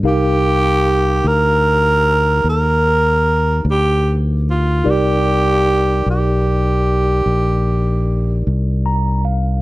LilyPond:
<<
  \new Staff \with { instrumentName = "Tine electric piano" } { \time 12/8 \key c \minor \tempo 4. = 50 << { r1. | r1 r4 bes''8 f''8 | } \\ { <ees' g' bes' f''>1. | <ees' g' bes' d''>1. | } >> }
  \new Staff \with { instrumentName = "Tenor saxophone" } { \time 12/8 \key c \minor g'4. bes'4. bes'4. g'8 r8 f'8 | g'4. g'2. r4. | }
  \new Staff \with { instrumentName = "Fingered electric bass" } { \clef bass \time 12/8 \key c \minor c,4. d,4. ees,4. d,4. | c,4. b,,4. bes,,4. c,4. | }
>>